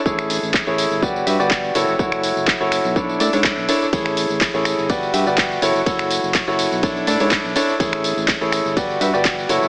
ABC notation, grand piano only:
X:1
M:4/4
L:1/16
Q:"Swing 16ths" 1/4=124
K:A
V:1 name="Grand piano"
[EGAc]4- [EGAc] [EGAc]3 [F=GBd]2 [FGBe] [FGBd]3 [EFAc] z | [EFAc]4- [EFAc] [EFAc]3 [DEAc]2 [DEAd] [DEAc]3 [DEAc] z | [EGAc]4- [EGAc] [EGAc]3 [F=GBd]2 [FGBe] [FGBd]3 [EFAc] z | [EFAc]4- [EFAc] [EFAc]3 [DEAc]2 [DEAd] [DEAc]3 [DEAc] z |
[EGAc]4- [EGAc] [EGAc]3 [F=GBd]2 [FGBe] [FGBd]3 [EFAc] z |]